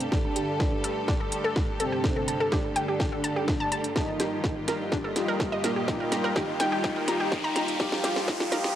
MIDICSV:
0, 0, Header, 1, 9, 480
1, 0, Start_track
1, 0, Tempo, 480000
1, 120, Time_signature, 4, 2, 24, 8
1, 8753, End_track
2, 0, Start_track
2, 0, Title_t, "Ambient pad"
2, 0, Program_c, 0, 92
2, 0, Note_on_c, 0, 67, 77
2, 0, Note_on_c, 0, 74, 81
2, 0, Note_on_c, 0, 81, 76
2, 3959, Note_off_c, 0, 74, 0
2, 3959, Note_on_c, 0, 55, 89
2, 4259, Note_on_c, 0, 65, 80
2, 4291, Note_on_c, 0, 75, 87
2, 4469, Note_on_c, 0, 79, 86
2, 5377, Note_off_c, 0, 81, 0
2, 5843, Note_off_c, 0, 67, 0
2, 8362, Note_on_c, 0, 74, 89
2, 8504, Note_off_c, 0, 75, 0
2, 8753, Note_off_c, 0, 55, 0
2, 8753, Note_off_c, 0, 65, 0
2, 8753, Note_off_c, 0, 74, 0
2, 8753, Note_off_c, 0, 79, 0
2, 8753, End_track
3, 0, Start_track
3, 0, Title_t, "Synth arpeggio sound"
3, 0, Program_c, 1, 84
3, 359, Note_on_c, 1, 67, 73
3, 455, Note_off_c, 1, 67, 0
3, 838, Note_on_c, 1, 69, 77
3, 897, Note_off_c, 1, 69, 0
3, 1079, Note_on_c, 1, 62, 100
3, 1197, Note_off_c, 1, 62, 0
3, 1203, Note_on_c, 1, 69, 76
3, 1314, Note_off_c, 1, 69, 0
3, 1442, Note_on_c, 1, 69, 102
3, 1533, Note_off_c, 1, 69, 0
3, 1800, Note_on_c, 1, 69, 77
3, 1857, Note_off_c, 1, 69, 0
3, 1922, Note_on_c, 1, 67, 75
3, 2013, Note_off_c, 1, 67, 0
3, 2163, Note_on_c, 1, 69, 77
3, 2253, Note_off_c, 1, 69, 0
3, 2278, Note_on_c, 1, 81, 74
3, 2375, Note_off_c, 1, 81, 0
3, 2403, Note_on_c, 1, 69, 104
3, 2493, Note_off_c, 1, 69, 0
3, 2520, Note_on_c, 1, 67, 99
3, 2577, Note_off_c, 1, 67, 0
3, 2759, Note_on_c, 1, 79, 101
3, 2855, Note_off_c, 1, 79, 0
3, 2883, Note_on_c, 1, 67, 76
3, 2973, Note_off_c, 1, 67, 0
3, 2999, Note_on_c, 1, 79, 83
3, 3117, Note_off_c, 1, 79, 0
3, 3122, Note_on_c, 1, 69, 73
3, 3213, Note_off_c, 1, 69, 0
3, 3238, Note_on_c, 1, 81, 78
3, 3335, Note_off_c, 1, 81, 0
3, 3362, Note_on_c, 1, 67, 77
3, 3474, Note_off_c, 1, 67, 0
3, 3602, Note_on_c, 1, 81, 104
3, 3693, Note_off_c, 1, 81, 0
3, 3719, Note_on_c, 1, 81, 76
3, 3777, Note_off_c, 1, 81, 0
3, 4199, Note_on_c, 1, 67, 75
3, 4295, Note_off_c, 1, 67, 0
3, 4680, Note_on_c, 1, 70, 78
3, 4737, Note_off_c, 1, 70, 0
3, 4919, Note_on_c, 1, 62, 102
3, 5037, Note_off_c, 1, 62, 0
3, 5043, Note_on_c, 1, 69, 79
3, 5154, Note_off_c, 1, 69, 0
3, 5283, Note_on_c, 1, 70, 103
3, 5373, Note_off_c, 1, 70, 0
3, 5522, Note_on_c, 1, 75, 103
3, 5613, Note_off_c, 1, 75, 0
3, 5640, Note_on_c, 1, 70, 79
3, 5697, Note_off_c, 1, 70, 0
3, 5762, Note_on_c, 1, 67, 73
3, 5853, Note_off_c, 1, 67, 0
3, 6002, Note_on_c, 1, 70, 78
3, 6093, Note_off_c, 1, 70, 0
3, 6118, Note_on_c, 1, 82, 78
3, 6215, Note_off_c, 1, 82, 0
3, 6241, Note_on_c, 1, 70, 106
3, 6332, Note_off_c, 1, 70, 0
3, 6359, Note_on_c, 1, 67, 98
3, 6417, Note_off_c, 1, 67, 0
3, 6599, Note_on_c, 1, 79, 104
3, 6695, Note_off_c, 1, 79, 0
3, 6722, Note_on_c, 1, 67, 80
3, 6813, Note_off_c, 1, 67, 0
3, 6839, Note_on_c, 1, 79, 83
3, 6957, Note_off_c, 1, 79, 0
3, 6962, Note_on_c, 1, 70, 78
3, 7053, Note_off_c, 1, 70, 0
3, 7078, Note_on_c, 1, 82, 79
3, 7175, Note_off_c, 1, 82, 0
3, 7202, Note_on_c, 1, 67, 80
3, 7313, Note_off_c, 1, 67, 0
3, 7442, Note_on_c, 1, 82, 103
3, 7533, Note_off_c, 1, 82, 0
3, 7558, Note_on_c, 1, 82, 80
3, 7616, Note_off_c, 1, 82, 0
3, 8039, Note_on_c, 1, 67, 79
3, 8135, Note_off_c, 1, 67, 0
3, 8519, Note_on_c, 1, 70, 81
3, 8577, Note_off_c, 1, 70, 0
3, 8753, End_track
4, 0, Start_track
4, 0, Title_t, "Analog polysynth"
4, 0, Program_c, 2, 90
4, 119, Note_on_c, 2, 62, 94
4, 119, Note_on_c, 2, 67, 86
4, 119, Note_on_c, 2, 69, 104
4, 1292, Note_off_c, 2, 62, 0
4, 1292, Note_off_c, 2, 67, 0
4, 1292, Note_off_c, 2, 69, 0
4, 1318, Note_on_c, 2, 62, 88
4, 1318, Note_on_c, 2, 67, 77
4, 1318, Note_on_c, 2, 69, 93
4, 2011, Note_off_c, 2, 62, 0
4, 2011, Note_off_c, 2, 67, 0
4, 2011, Note_off_c, 2, 69, 0
4, 2039, Note_on_c, 2, 67, 87
4, 2040, Note_on_c, 2, 62, 96
4, 2040, Note_on_c, 2, 69, 105
4, 3212, Note_off_c, 2, 62, 0
4, 3212, Note_off_c, 2, 67, 0
4, 3212, Note_off_c, 2, 69, 0
4, 3362, Note_on_c, 2, 67, 82
4, 3363, Note_on_c, 2, 62, 91
4, 3363, Note_on_c, 2, 69, 100
4, 3931, Note_off_c, 2, 67, 0
4, 3932, Note_off_c, 2, 62, 0
4, 3932, Note_off_c, 2, 69, 0
4, 3959, Note_on_c, 2, 63, 96
4, 3959, Note_on_c, 2, 65, 87
4, 3959, Note_on_c, 2, 67, 104
4, 5131, Note_off_c, 2, 63, 0
4, 5131, Note_off_c, 2, 65, 0
4, 5132, Note_off_c, 2, 67, 0
4, 5160, Note_on_c, 2, 63, 85
4, 5160, Note_on_c, 2, 65, 81
4, 5160, Note_on_c, 2, 67, 97
4, 5852, Note_off_c, 2, 63, 0
4, 5852, Note_off_c, 2, 65, 0
4, 5852, Note_off_c, 2, 67, 0
4, 5879, Note_on_c, 2, 63, 95
4, 5879, Note_on_c, 2, 65, 87
4, 5879, Note_on_c, 2, 67, 105
4, 7051, Note_off_c, 2, 63, 0
4, 7052, Note_off_c, 2, 65, 0
4, 7052, Note_off_c, 2, 67, 0
4, 7078, Note_on_c, 2, 63, 86
4, 7078, Note_on_c, 2, 65, 81
4, 7078, Note_on_c, 2, 67, 98
4, 7771, Note_off_c, 2, 63, 0
4, 7771, Note_off_c, 2, 65, 0
4, 7771, Note_off_c, 2, 67, 0
4, 7799, Note_on_c, 2, 63, 96
4, 7800, Note_on_c, 2, 65, 88
4, 7800, Note_on_c, 2, 67, 108
4, 8753, Note_off_c, 2, 63, 0
4, 8753, Note_off_c, 2, 65, 0
4, 8753, Note_off_c, 2, 67, 0
4, 8753, End_track
5, 0, Start_track
5, 0, Title_t, "String section"
5, 0, Program_c, 3, 48
5, 0, Note_on_c, 3, 50, 77
5, 0, Note_on_c, 3, 55, 70
5, 0, Note_on_c, 3, 57, 69
5, 0, Note_on_c, 3, 67, 68
5, 0, Note_on_c, 3, 69, 83
5, 3919, Note_off_c, 3, 55, 0
5, 3919, Note_off_c, 3, 57, 0
5, 3919, Note_off_c, 3, 67, 0
5, 3920, Note_off_c, 3, 50, 0
5, 3920, Note_off_c, 3, 69, 0
5, 3959, Note_on_c, 3, 43, 77
5, 3959, Note_on_c, 3, 55, 72
5, 3959, Note_on_c, 3, 58, 72
5, 3959, Note_on_c, 3, 67, 87
5, 3960, Note_on_c, 3, 65, 70
5, 8753, Note_off_c, 3, 43, 0
5, 8753, Note_off_c, 3, 55, 0
5, 8753, Note_off_c, 3, 58, 0
5, 8753, Note_off_c, 3, 65, 0
5, 8753, Note_off_c, 3, 67, 0
5, 8753, End_track
6, 0, Start_track
6, 0, Title_t, "Supersaw synth"
6, 0, Program_c, 4, 81
6, 118, Note_on_c, 4, 50, 85
6, 119, Note_on_c, 4, 62, 105
6, 986, Note_off_c, 4, 50, 0
6, 986, Note_off_c, 4, 62, 0
6, 1801, Note_on_c, 4, 48, 81
6, 1801, Note_on_c, 4, 60, 100
6, 2427, Note_off_c, 4, 48, 0
6, 2428, Note_off_c, 4, 60, 0
6, 2519, Note_on_c, 4, 50, 85
6, 2520, Note_on_c, 4, 62, 109
6, 3866, Note_off_c, 4, 50, 0
6, 3867, Note_off_c, 4, 62, 0
6, 3960, Note_on_c, 4, 51, 85
6, 3960, Note_on_c, 4, 63, 108
6, 4827, Note_off_c, 4, 51, 0
6, 4827, Note_off_c, 4, 63, 0
6, 5639, Note_on_c, 4, 46, 84
6, 5639, Note_on_c, 4, 58, 100
6, 6266, Note_off_c, 4, 58, 0
6, 6267, Note_off_c, 4, 46, 0
6, 6360, Note_on_c, 4, 63, 111
6, 6361, Note_on_c, 4, 51, 86
6, 7707, Note_off_c, 4, 63, 0
6, 7708, Note_off_c, 4, 51, 0
6, 7800, Note_on_c, 4, 53, 82
6, 7800, Note_on_c, 4, 65, 108
6, 8667, Note_off_c, 4, 53, 0
6, 8667, Note_off_c, 4, 65, 0
6, 8753, End_track
7, 0, Start_track
7, 0, Title_t, "Synth drone"
7, 0, Program_c, 5, 95
7, 0, Note_on_c, 5, 43, 75
7, 8753, Note_off_c, 5, 43, 0
7, 8753, End_track
8, 0, Start_track
8, 0, Title_t, "Riser"
8, 0, Program_c, 6, 103
8, 3959, Note_on_c, 6, 60, 80
8, 8753, Note_off_c, 6, 60, 0
8, 8753, End_track
9, 0, Start_track
9, 0, Title_t, "Drums"
9, 3, Note_on_c, 9, 42, 61
9, 103, Note_off_c, 9, 42, 0
9, 119, Note_on_c, 9, 36, 118
9, 119, Note_on_c, 9, 38, 58
9, 219, Note_off_c, 9, 36, 0
9, 219, Note_off_c, 9, 38, 0
9, 359, Note_on_c, 9, 42, 105
9, 459, Note_off_c, 9, 42, 0
9, 599, Note_on_c, 9, 36, 119
9, 599, Note_on_c, 9, 38, 60
9, 699, Note_off_c, 9, 36, 0
9, 699, Note_off_c, 9, 38, 0
9, 839, Note_on_c, 9, 42, 111
9, 939, Note_off_c, 9, 42, 0
9, 1079, Note_on_c, 9, 36, 119
9, 1079, Note_on_c, 9, 38, 61
9, 1179, Note_off_c, 9, 36, 0
9, 1179, Note_off_c, 9, 38, 0
9, 1318, Note_on_c, 9, 42, 107
9, 1418, Note_off_c, 9, 42, 0
9, 1558, Note_on_c, 9, 38, 62
9, 1559, Note_on_c, 9, 36, 123
9, 1658, Note_off_c, 9, 38, 0
9, 1659, Note_off_c, 9, 36, 0
9, 1799, Note_on_c, 9, 42, 106
9, 1899, Note_off_c, 9, 42, 0
9, 2038, Note_on_c, 9, 38, 67
9, 2039, Note_on_c, 9, 36, 119
9, 2138, Note_off_c, 9, 38, 0
9, 2139, Note_off_c, 9, 36, 0
9, 2279, Note_on_c, 9, 42, 108
9, 2379, Note_off_c, 9, 42, 0
9, 2518, Note_on_c, 9, 36, 123
9, 2520, Note_on_c, 9, 38, 67
9, 2618, Note_off_c, 9, 36, 0
9, 2620, Note_off_c, 9, 38, 0
9, 2759, Note_on_c, 9, 42, 104
9, 2859, Note_off_c, 9, 42, 0
9, 2998, Note_on_c, 9, 36, 121
9, 2999, Note_on_c, 9, 38, 68
9, 3098, Note_off_c, 9, 36, 0
9, 3099, Note_off_c, 9, 38, 0
9, 3239, Note_on_c, 9, 42, 106
9, 3339, Note_off_c, 9, 42, 0
9, 3478, Note_on_c, 9, 36, 124
9, 3479, Note_on_c, 9, 38, 69
9, 3578, Note_off_c, 9, 36, 0
9, 3579, Note_off_c, 9, 38, 0
9, 3719, Note_on_c, 9, 42, 106
9, 3819, Note_off_c, 9, 42, 0
9, 3842, Note_on_c, 9, 42, 62
9, 3942, Note_off_c, 9, 42, 0
9, 3959, Note_on_c, 9, 36, 114
9, 3959, Note_on_c, 9, 38, 73
9, 4059, Note_off_c, 9, 36, 0
9, 4059, Note_off_c, 9, 38, 0
9, 4199, Note_on_c, 9, 38, 73
9, 4199, Note_on_c, 9, 42, 104
9, 4299, Note_off_c, 9, 38, 0
9, 4299, Note_off_c, 9, 42, 0
9, 4439, Note_on_c, 9, 36, 117
9, 4439, Note_on_c, 9, 38, 75
9, 4539, Note_off_c, 9, 36, 0
9, 4539, Note_off_c, 9, 38, 0
9, 4679, Note_on_c, 9, 38, 75
9, 4679, Note_on_c, 9, 42, 105
9, 4779, Note_off_c, 9, 38, 0
9, 4779, Note_off_c, 9, 42, 0
9, 4919, Note_on_c, 9, 36, 119
9, 4919, Note_on_c, 9, 38, 76
9, 5019, Note_off_c, 9, 36, 0
9, 5019, Note_off_c, 9, 38, 0
9, 5159, Note_on_c, 9, 38, 77
9, 5159, Note_on_c, 9, 42, 105
9, 5259, Note_off_c, 9, 38, 0
9, 5259, Note_off_c, 9, 42, 0
9, 5399, Note_on_c, 9, 36, 117
9, 5399, Note_on_c, 9, 38, 79
9, 5499, Note_off_c, 9, 36, 0
9, 5499, Note_off_c, 9, 38, 0
9, 5639, Note_on_c, 9, 38, 81
9, 5639, Note_on_c, 9, 42, 104
9, 5739, Note_off_c, 9, 38, 0
9, 5739, Note_off_c, 9, 42, 0
9, 5879, Note_on_c, 9, 36, 114
9, 5880, Note_on_c, 9, 38, 85
9, 5979, Note_off_c, 9, 36, 0
9, 5980, Note_off_c, 9, 38, 0
9, 6119, Note_on_c, 9, 38, 82
9, 6119, Note_on_c, 9, 42, 102
9, 6219, Note_off_c, 9, 38, 0
9, 6219, Note_off_c, 9, 42, 0
9, 6359, Note_on_c, 9, 36, 114
9, 6359, Note_on_c, 9, 38, 89
9, 6459, Note_off_c, 9, 36, 0
9, 6459, Note_off_c, 9, 38, 0
9, 6600, Note_on_c, 9, 38, 88
9, 6600, Note_on_c, 9, 42, 99
9, 6700, Note_off_c, 9, 38, 0
9, 6700, Note_off_c, 9, 42, 0
9, 6839, Note_on_c, 9, 36, 116
9, 6840, Note_on_c, 9, 38, 86
9, 6939, Note_off_c, 9, 36, 0
9, 6940, Note_off_c, 9, 38, 0
9, 7079, Note_on_c, 9, 38, 88
9, 7079, Note_on_c, 9, 42, 102
9, 7179, Note_off_c, 9, 38, 0
9, 7179, Note_off_c, 9, 42, 0
9, 7319, Note_on_c, 9, 36, 117
9, 7319, Note_on_c, 9, 38, 86
9, 7419, Note_off_c, 9, 36, 0
9, 7419, Note_off_c, 9, 38, 0
9, 7559, Note_on_c, 9, 38, 88
9, 7559, Note_on_c, 9, 42, 100
9, 7659, Note_off_c, 9, 38, 0
9, 7659, Note_off_c, 9, 42, 0
9, 7683, Note_on_c, 9, 42, 58
9, 7783, Note_off_c, 9, 42, 0
9, 7799, Note_on_c, 9, 36, 114
9, 7799, Note_on_c, 9, 38, 94
9, 7899, Note_off_c, 9, 36, 0
9, 7899, Note_off_c, 9, 38, 0
9, 7923, Note_on_c, 9, 38, 83
9, 8023, Note_off_c, 9, 38, 0
9, 8039, Note_on_c, 9, 38, 94
9, 8039, Note_on_c, 9, 42, 103
9, 8139, Note_off_c, 9, 38, 0
9, 8139, Note_off_c, 9, 42, 0
9, 8164, Note_on_c, 9, 38, 83
9, 8264, Note_off_c, 9, 38, 0
9, 8279, Note_on_c, 9, 36, 113
9, 8280, Note_on_c, 9, 38, 96
9, 8379, Note_off_c, 9, 36, 0
9, 8380, Note_off_c, 9, 38, 0
9, 8403, Note_on_c, 9, 38, 84
9, 8503, Note_off_c, 9, 38, 0
9, 8520, Note_on_c, 9, 38, 93
9, 8520, Note_on_c, 9, 42, 104
9, 8620, Note_off_c, 9, 38, 0
9, 8620, Note_off_c, 9, 42, 0
9, 8644, Note_on_c, 9, 38, 86
9, 8744, Note_off_c, 9, 38, 0
9, 8753, End_track
0, 0, End_of_file